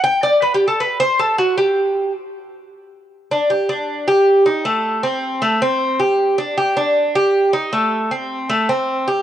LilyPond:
\new Staff \with { instrumentName = "Cuban tres" } { \time 4/4 \key g \major \tempo 4 = 156 g''8 d''8 \tuplet 3/2 { b'8 g'8 a'8 } b'8 c''8 a'8 fis'8 | g'4. r2 r8 | r8 d'8 g'8 d'4 g'4 ees'8 | a4 c'4 a8 c'4 g'8~ |
g'8 d'8 g'8 d'4 g'4 ees'8 | a4 c'4 a8 c'4 g'8 | }